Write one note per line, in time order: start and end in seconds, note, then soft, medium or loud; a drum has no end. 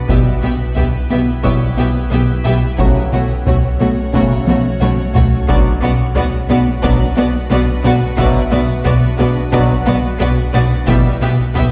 0.00 0.73 B5 medium
0.08 0.17 B1 medium
0.08 5.45 B1 medium
0.08 0.32 B2 medium
0.08 0.29 B2 loud
0.08 0.17 B2 medium
0.08 0.32 G3 medium
0.08 2.74 B3 medium
0.08 0.17 B3 medium
0.08 0.33 B3 medium
0.08 2.78 E4 medium
0.08 0.33 E4 medium
0.08 2.78 G4 medium
0.08 0.17 G4 medium
0.08 2.74 B4 medium
0.08 0.17 E5 medium
0.08 taiko loud
0.42 0.50 B1 medium
0.42 0.50 B2 medium
0.42 0.63 B2 medium
0.42 0.50 B3 medium
0.42 0.52 G4 medium
0.42 0.50 E5 medium
0.76 0.84 B1 medium
0.76 0.84 B2 medium
0.76 0.97 B2 medium
0.76 0.85 B3 medium
0.76 0.84 G4 medium
0.76 0.84 E5 medium
0.76 taiko low medium
1.10 1.18 B1 medium
1.10 1.18 B2 medium
1.10 1.31 B3 medium
1.10 1.19 B3 medium
1.10 1.19 G4 medium
1.10 1.18 E5 medium
1.43 1.51 B1 medium
1.43 1.67 B2 medium
1.43 1.64 B2 loud
1.43 1.52 B2 medium
1.43 1.67 G3 medium
1.43 1.52 B3 medium
1.43 1.68 B3 medium
1.43 1.68 E4 medium
1.43 1.53 G4 medium
1.43 3.42 C#5 medium
1.43 1.52 E5 medium
1.43 3.42 C#6 medium
1.43 taiko medium
1.77 1.85 B1 medium
1.77 1.86 B2 medium
1.77 1.98 B3 medium
1.77 1.86 B3 medium
1.77 1.87 G4 medium
1.77 1.86 E5 medium
2.11 2.19 B1 medium
2.11 2.19 B2 medium
2.11 2.32 B2 medium
2.11 2.19 B3 medium
2.11 2.21 G4 medium
2.11 2.19 E5 medium
2.45 2.53 B1 medium
2.45 2.65 B2 medium
2.45 2.53 B2 medium
2.45 2.53 B3 medium
2.45 2.54 G4 medium
2.45 2.53 E5 medium
2.78 2.87 B1 medium
2.78 2.99 B2 loud
2.78 2.87 B2 medium
2.78 3.03 C#3 medium
2.78 3.03 F#3 medium
2.78 5.48 A3 medium
2.78 3.02 A3 medium
2.78 2.87 A3 medium
2.78 5.48 C#4 medium
2.78 3.02 C#4 medium
2.78 5.47 F#4 medium
2.78 2.87 F#4 medium
2.78 5.48 C#5 medium
2.78 2.87 C#5 medium
2.78 taiko loud
3.12 3.20 B1 medium
3.12 3.21 B2 medium
3.12 3.33 B2 medium
3.12 3.21 A3 medium
3.12 3.21 F#4 medium
3.12 3.21 C#5 medium
3.46 3.54 B1 medium
3.46 3.54 B2 medium
3.46 3.67 B2 medium
3.46 3.54 A3 medium
3.46 3.55 F#4 medium
3.46 3.55 C#5 medium
3.46 taiko low medium
3.80 3.88 B1 medium
3.80 3.88 B2 medium
3.80 3.89 A3 medium
3.80 4.01 B3 medium
3.80 3.88 F#4 medium
3.80 3.88 C#5 medium
4.13 4.21 B1 medium
4.13 4.21 B2 medium
4.13 4.34 B2 loud
4.13 4.37 C#3 medium
4.13 4.37 F#3 medium
4.13 4.37 A3 medium
4.13 4.22 A3 medium
4.13 4.37 C#4 medium
4.13 4.22 F#4 medium
4.13 4.22 C#5 medium
4.13 taiko medium
4.47 4.55 B1 medium
4.47 4.55 B2 medium
4.47 4.56 A3 medium
4.47 4.68 B3 medium
4.47 4.56 F#4 medium
4.47 4.55 C#5 medium
4.47 taiko high medium
4.81 4.89 B1 medium
4.81 4.89 B2 medium
4.81 5.01 B2 medium
4.81 4.90 A3 medium
4.81 4.89 F#4 medium
4.81 4.89 C#5 medium
4.81 taiko high medium
5.15 5.23 B1 medium
5.15 5.35 B2 medium
5.15 5.23 B2 medium
5.15 5.23 A3 medium
5.15 5.23 F#4 medium
5.15 5.23 C#5 medium
5.15 taiko low loud
5.48 5.56 B1 loud
5.48 10.84 B1 medium
5.48 5.56 B2 loud
5.48 5.69 B2 loud
5.48 5.72 B2 loud
5.48 5.72 F#3 medium
5.48 5.56 B3 medium
5.48 10.87 B3 medium
5.48 5.72 B3 medium
5.48 5.72 D4 medium
5.48 10.88 D4 medium
5.48 10.84 F#4 medium
5.48 5.57 F#4 medium
5.48 10.87 B4 medium
5.48 5.56 D5 medium
5.48 7.47 D6 medium
5.48 taiko loud
5.82 5.90 B1 medium
5.82 5.90 B2 medium
5.82 6.02 B2 medium
5.82 5.90 B3 medium
5.82 5.91 F#4 medium
5.82 5.90 D5 medium
6.16 6.24 B1 medium
6.16 6.24 B2 medium
6.16 6.36 B2 medium
6.16 6.24 B3 medium
6.16 6.25 F#4 medium
6.16 6.24 D5 medium
6.16 taiko low medium
6.49 6.57 B1 medium
6.49 6.57 B2 medium
6.49 6.70 B3 medium
6.49 6.58 B3 medium
6.49 6.58 F#4 medium
6.49 6.57 D5 medium
6.83 6.91 B1 loud
6.83 6.91 B2 medium
6.83 7.04 B2 loud
6.83 7.07 B2 medium
6.83 7.07 F#3 medium
6.83 7.06 B3 medium
6.83 6.91 B3 medium
6.83 7.07 D4 medium
6.83 6.92 F#4 medium
6.83 6.91 D5 medium
6.83 taiko loud
7.16 7.25 B1 medium
7.16 7.24 B2 medium
7.16 7.37 B3 medium
7.16 7.25 B3 medium
7.16 7.25 F#4 medium
7.16 7.25 D5 medium
7.50 7.59 B1 medium
7.50 7.58 B2 loud
7.50 7.71 B2 medium
7.50 7.58 B3 medium
7.50 7.59 F#4 medium
7.50 7.59 D5 medium
7.84 7.92 B1 medium
7.84 7.92 B2 loud
7.84 8.04 B2 medium
7.84 7.92 B3 medium
7.84 7.92 F#4 medium
7.84 7.92 D5 medium
8.18 8.26 B1 medium
8.18 8.26 B2 loud
8.18 8.38 B2 loud
8.18 8.42 B2 loud
8.18 8.42 F#3 loud
8.18 8.41 B3 medium
8.18 8.26 B3 medium
8.18 8.41 D4 medium
8.18 8.26 F#4 medium
8.18 8.27 D5 medium
8.18 10.16 E5 medium
8.18 10.16 E6 medium
8.18 taiko loud
8.51 8.60 B1 medium
8.51 8.60 B2 medium
8.51 8.72 B2 medium
8.51 8.60 B3 medium
8.51 8.59 F#4 medium
8.51 8.60 D5 medium
8.85 8.93 B1 medium
8.85 8.94 B2 medium
8.85 9.06 B2 medium
8.85 8.93 B3 medium
8.85 8.93 F#4 medium
8.85 8.93 D5 medium
8.85 taiko low medium
9.18 9.27 B1 medium
9.18 9.27 B2 loud
9.18 9.27 B3 medium
9.18 9.40 B3 medium
9.18 9.26 F#4 medium
9.18 9.27 D5 medium
9.52 9.61 B1 loud
9.52 9.61 B2 loud
9.52 9.73 B2 loud
9.52 9.77 B2 medium
9.52 9.77 F#3 loud
9.52 9.60 B3 medium
9.52 9.77 B3 medium
9.52 9.76 D4 medium
9.52 9.60 F#4 medium
9.52 9.61 D5 loud
9.52 taiko medium
9.86 9.95 B1 medium
9.86 9.95 B2 loud
9.86 9.94 B3 medium
9.86 10.07 B3 medium
9.86 9.94 F#4 medium
9.86 9.95 D5 medium
10.20 10.29 B1 medium
10.20 10.41 B2 medium
10.20 10.29 B2 loud
10.20 10.28 B3 medium
10.20 10.28 F#4 medium
10.20 10.28 D5 medium
10.54 10.63 B1 medium
10.54 10.74 B2 medium
10.54 10.63 B2 loud
10.54 10.62 B3 medium
10.54 10.62 F#4 medium
10.54 10.62 D5 medium
10.54 11.72 A6 medium
10.87 10.96 B1 loud
10.87 11.72 B1 medium
10.87 11.08 B2 loud
10.87 10.96 B2 loud
10.87 11.12 B2 medium
10.87 11.12 G3 loud
10.87 10.96 B3 medium
10.87 11.72 B3 medium
10.87 11.12 B3 medium
10.87 11.12 E4 medium
10.87 11.72 E4 medium
10.87 10.95 G4 medium
10.87 11.72 G4 medium
10.87 11.72 B4 medium
10.87 10.96 E5 medium
10.87 taiko loud
11.21 11.30 B1 medium
11.21 11.42 B2 medium
11.21 11.30 B2 medium
11.21 11.29 B3 medium
11.21 11.30 G4 medium
11.21 11.30 E5 medium
11.55 11.63 B1 medium
11.55 11.72 B2 medium
11.55 11.64 B2 medium
11.55 11.63 B3 medium
11.55 11.63 G4 medium
11.55 11.64 E5 medium
11.55 taiko low medium